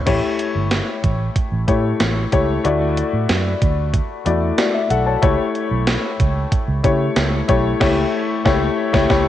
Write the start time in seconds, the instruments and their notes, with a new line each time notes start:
0.06 fingered electric bass A1, grand piano A3 E4 G4 C#5, kick, closed hi-hat, crash
0.39 closed hi-hat
0.55 fingered electric bass G1
0.71 snare, closed hi-hat
1.04 fingered electric bass A1, kick, closed hi-hat
1.36 kick, closed hi-hat
1.52 fingered electric bass A1
1.67 fingered electric bass A2, grand piano A3 E4 G4 C#5, kick, closed hi-hat
2.00 fingered electric bass A1, snare, closed hi-hat
2.32 fingered electric bass C#2, grand piano A3 E4 G4 C#5, kick, closed hi-hat
2.64 fingered electric bass D2, grand piano A3 E4 F#4 D5, closed hi-hat
2.97 closed hi-hat
3.13 fingered electric bass A2
3.29 fingered electric bass F#2, snare, closed hi-hat
3.62 fingered electric bass D2, kick, closed hi-hat
3.94 kick, closed hi-hat
4.26 fingered electric bass E2, grand piano A3 E4 F#4 D5, closed hi-hat
4.58 grand piano F#4 D5, snare, closed hi-hat
4.74 grand piano E5
4.91 fingered electric bass B1, grand piano A4 F#5, closed hi-hat
5.07 grand piano C#5 A5
5.22 fingered electric bass C#2, grand piano A3 E4 G4 C#5, kick, closed hi-hat
5.55 closed hi-hat
5.71 fingered electric bass B1
5.87 snare, closed hi-hat
6.20 fingered electric bass C#2, kick, closed hi-hat
6.52 kick, closed hi-hat
6.68 fingered electric bass C#2
6.83 fingered electric bass C#3, grand piano A3 E4 G4 C#5, kick, closed hi-hat
7.16 fingered electric bass C#2, snare, closed hi-hat
7.48 fingered electric bass B1, grand piano A3 E4 G4 C#5, kick, closed hi-hat
7.80 fingered electric bass C#2, grand piano A3 E4 G4 C#5, kick, snare, crash
8.45 fingered electric bass C#2, grand piano A3 E4 G4 C#5, kick, snare
8.93 fingered electric bass C#2, grand piano A3 E4 G4 C#5, kick, snare
9.09 fingered electric bass C#2, grand piano A3 E4 G4 C#5, kick, snare